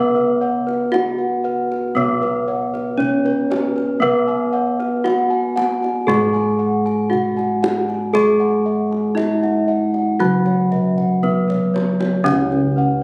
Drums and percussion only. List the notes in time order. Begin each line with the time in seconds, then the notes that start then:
0.16 kendang slap
0.68 kendang slap
0.94 kendang high
1.72 kendang slap
1.98 kendang low
2.23 kendang slap
2.75 kendang slap
3.00 kendang low
3.26 kendang slap
3.52 kendang high
3.78 kendang slap
4.03 kendang low
4.29 kendang slap
4.80 kendang slap
5.06 kendang high
5.57 kendang high
5.84 kendang slap
6.09 kendang high, kendang low
6.36 kendang slap
6.87 kendang slap
7.13 kendang low
7.39 kendang slap
7.64 kendang high
7.90 kendang slap
8.15 kendang low
8.41 kendang slap
8.92 kendang slap
9.17 kendang high
9.44 kendang slap
9.94 kendang slap
10.20 kendang low
10.46 kendang slap
10.72 kendang low
10.98 kendang low
11.24 kendang low
11.50 kendang low
11.76 kendang high
12.00 kendang high
12.26 kendang low
12.52 kendang slap